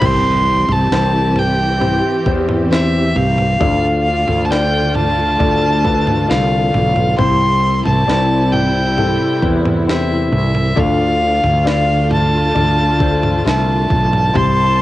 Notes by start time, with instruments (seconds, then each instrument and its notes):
0.00 fretless electric bass C2, grand piano C3 C4 E4 G4 C5, string section E3 C4 G4, kick, floor tom, crash, impact
0.05 violin C6
0.69 fretless electric bass C2, violin A5, floor tom
0.92 fretless electric bass C2, grand piano C4 E4 G4 C5, snare
1.36 violin G5, floor tom
1.80 grand piano C4 E4 G4 C5, string section C4, floor tom
2.26 fretless electric bass E2, grand piano C4 E4 G4 C5, kick
2.49 floor tom
2.71 grand piano E3 C4 G4 C5, violin E5, snare
3.16 fretless electric bass C2, violin F5, floor tom
3.38 floor tom
3.60 fretless electric bass D2, string section D3 A3 F4, grand piano D3 D4 F4 A4 D5, kick, floor tom
4.28 fretless electric bass D2, floor tom
4.45 violin A5
4.50 grand piano D4 F4 A4 D5, violin G5, snare
4.95 violin A5, floor tom
5.39 fretless electric bass D2, grand piano D4 F4 A4 D5, kick, floor tom
5.83 grand piano D4 F4 A4 B4, kick
6.07 floor tom
6.27 fretless electric bass C2, grand piano D4 F4 A4 D5, violin F5, snare
6.74 fretless electric bass B1, floor tom
6.96 floor tom
7.17 fretless electric bass C2, grand piano C3 C4 E4 G4 C5, string section C3 G3 E4, violin C6, kick, floor tom
7.85 fretless electric bass C2, violin A5, floor tom
8.07 fretless electric bass C2, grand piano C4 E4 G4 D5, snare
8.52 violin G5, floor tom
8.97 grand piano C4 E4 G4 A4, floor tom
9.42 fretless electric bass E2, grand piano C4 E4 G4 B4, kick
9.66 floor tom
9.87 grand piano C4 E4 G4 C5, violin E5, snare
10.32 fretless electric bass C2, floor tom
10.55 floor tom
10.76 fretless electric bass D2, string section D3 A3 F4, grand piano D3 D4 F4 A4 D5, kick, floor tom
10.80 violin F5
11.44 fretless electric bass D2, floor tom
11.64 grand piano D4 F4 A4 D5, snare
11.69 violin F5
12.11 violin A5, floor tom
12.55 fretless electric bass D2, grand piano D4 F4 A4 D5, floor tom
12.99 grand piano D4 F4 A4 C5, kick
13.23 floor tom
13.45 fretless electric bass C2, grand piano D4 F4 A4 E5, violin A5, snare
13.90 fretless electric bass B1, kick, floor tom
14.13 floor tom
14.33 fretless electric bass C2, grand piano C3 C4 E4 G4 C5, string section C3 G3 E4, violin section A5, violin C6, kick, floor tom